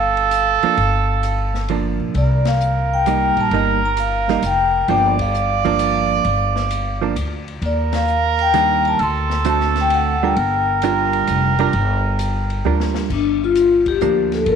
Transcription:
Already playing: G1 A4 F5
0.17 ride
0.31 hi-hat pedal, ride
0.63 F3 A#3 D4, muted upright bass stroke, ride
0.77 G1, ride
1.23 hi-hat pedal, ride
1.54 snare
1.68 F3 A#3 D4, ride
2.00 A#1
2.14 C2 A#4 D5, ride
2.45 F5, snare, ride
2.60 hi-hat pedal
2.94 G5
3.06 G3 A#3 D#4, hi-hat pedal, ride
3.37 A#1 A5, ride
3.51 G1 G3 A#3 D#4 A#5, ride
3.86 A#5
3.97 F5, hi-hat pedal, ride
4.28 G3 A#3 D#4, snare
4.42 F1 G5, hi-hat pedal, ride
4.88 G1 F3 A#3 D4 D5 G5, ride
5.19 F5, kick, ride
5.34 hi-hat pedal
5.65 F3 A#3 D4, kick, ride
5.79 hi-hat pedal, ride
6.25 G1, ride
6.56 snare
6.70 hi-hat pedal, ride
7.01 F3 A#3 D4
7.16 D2, hi-hat pedal, ride
7.48 ride
7.62 D#2 A#4, ride
7.66 D5
7.93 F5, snare, ride
8.07 hi-hat pedal
8.39 G5, ride
8.54 D#3 G3 A#3 D4, hi-hat pedal, ride
8.85 A5, ride
8.99 D2 A4 C6, ride
9.30 snare
9.45 D3 A3 C4 F#4, hi-hat pedal, ride
9.49 A5
9.60 snare
9.75 snare, ride
9.81 G5
9.90 F#5, ride
10.23 G3 D4 F4 A#4 G5
10.36 G1 A#4, ride
10.82 G3 D4 F4 A#4, hi-hat pedal, ride
11.13 ride
11.27 F1, hi-hat pedal, ride
11.59 G3 D4 F4 A#4, ride
11.73 G1, ride
12.19 hi-hat pedal, ride
12.50 ride
12.65 D2 G3 D4 F4 A#4
12.80 snare
12.95 snare
13.10 G1 D4, kick, crash
13.44 F4
13.55 hi-hat pedal, ride
13.86 G4, kick, ride
14.01 D2 F3 A#3 D4, hi-hat pedal
14.32 A4, snare, ride
14.46 G1 A#4, ride

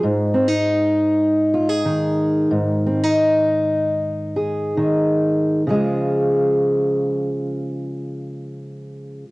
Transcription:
0.03 G#2
0.34 C4
0.48 D#4
1.54 F4
1.69 G#4
1.85 D#3
2.51 G#2
2.86 C4
3.03 D#4
4.36 G#4
4.77 D#3
5.67 C#3 F3 G#3
5.73 F4 G#4

